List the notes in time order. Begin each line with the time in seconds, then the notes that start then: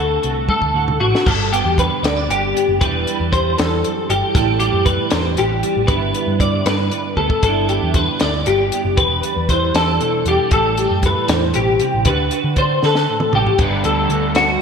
Already playing: D2 D3 A3 C4 F#4 A4
0.23 C2 A3 F#4, closed hi-hat
0.49 A4, kick, high tom
0.61 D2, kick
0.74 D2 A2 F#4
0.88 mid tom
1.00 A1 C4 F#4, floor tom
1.15 snare
1.26 G1 G2 A4, kick, crash
1.53 B3 G4, closed hi-hat
1.65 E2
1.78 D3 B4, kick, closed hi-hat
2.03 D2 B3 D5, snare, closed hi-hat
2.17 D4
2.29 G1 G2 G4, closed hi-hat
2.54 B3, closed hi-hat
2.69 F#1
2.80 E1 E2 E3 G3 D4 G4 B4, kick, closed hi-hat
3.07 G3, closed hi-hat
3.20 E2
3.32 E3 C5, kick, closed hi-hat
3.58 E2 A4, snare, closed hi-hat
3.84 F#2, closed hi-hat
4.09 G1 G2 G4, closed hi-hat
4.34 A1 A2 E3 G3 C4 G4 A4, kick, closed hi-hat
4.60 G3 G4, closed hi-hat
4.73 F#2
4.86 E3 B4, kick, closed hi-hat
5.10 E2 C4 C5, snare, closed hi-hat
5.37 A1 E2 G4, closed hi-hat
5.63 G3, closed hi-hat
5.77 A1
5.87 G1 G2 D3 B3 D4 E4 B4, kick, closed hi-hat
6.13 B3, closed hi-hat
6.27 G2
6.39 D3 D5, kick, closed hi-hat
6.66 G2 D4 B4, snare, closed hi-hat
6.91 G2, closed hi-hat
7.17 D2 B3 A4, kick
7.30 kick
7.43 G1 G2 D3 B3 D4 A4, kick, closed hi-hat
7.47 E4
7.69 B3 G4, closed hi-hat
7.83 E2
7.94 D3 B4, kick, closed hi-hat
8.20 D2 D4 D5, snare, closed hi-hat
8.46 G1 G2 G4, closed hi-hat
8.72 B3, closed hi-hat
8.85 F#1
8.97 E1 E2 B4, kick, closed hi-hat
9.23 G3, closed hi-hat
9.36 E2
9.49 E3 C5, kick, closed hi-hat
9.74 E2 D4 A4, snare, closed hi-hat
10.00 B2, closed hi-hat
10.26 E2 G3 G4, closed hi-hat
10.51 A1 A2 A4, kick, closed hi-hat
10.77 G3 G4, closed hi-hat
10.91 F#2
11.03 E3 B4, kick, closed hi-hat
11.28 E2 A2 C5, snare, closed hi-hat
11.53 A1 B2 G4, closed hi-hat
11.80 C3, closed hi-hat
11.95 A1
12.05 D2 D3 D4 F#4 B4, kick, closed hi-hat
12.31 F#4, closed hi-hat
12.44 D3
12.56 D4 C5, kick, closed hi-hat
12.83 D3 A4 B4, snare
12.95 snare
13.09 A2
13.20 mid tom
13.33 A1 F#4 G4, mid tom
13.47 floor tom
13.59 G1 G2 D3 G3 B3 D4 B4, kick, closed hi-hat
13.63 D4
13.84 D2 A4, closed hi-hat
14.09 D2 D3 F#4, closed hi-hat
14.35 F#4, snare, closed hi-hat